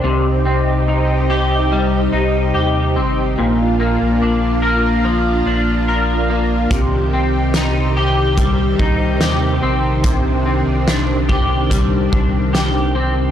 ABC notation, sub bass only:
X:1
M:4/4
L:1/16
Q:1/4=72
K:Cm
V:1 name="Sub bass" clef=bass
C,,8- C,,2 C,,2 E,,2 A,,,2 | B,,,3 B,,, B,,,6 B,,,6 | C,,8- C,,2 C,,2 E,,2 B,,,2 | C,,3 C,, C,,6 C,,6 |]